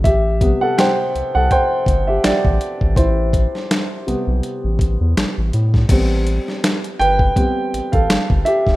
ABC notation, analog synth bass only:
X:1
M:4/4
L:1/16
Q:"Swing 16ths" 1/4=82
K:Am
V:1 name="Analog synth bass" clef=bass
A,,,3 z3 C,, C,, z2 G,,,2 A,,, A,,, z ^G,,, | A,,,3 z3 B,,, B,,, z A,,, A,,, E,, A,,, A,,, A,,2 | A,,,3 z3 G,,,2 z2 A,,, A,,, G,,, G,,, z ^D,,, |]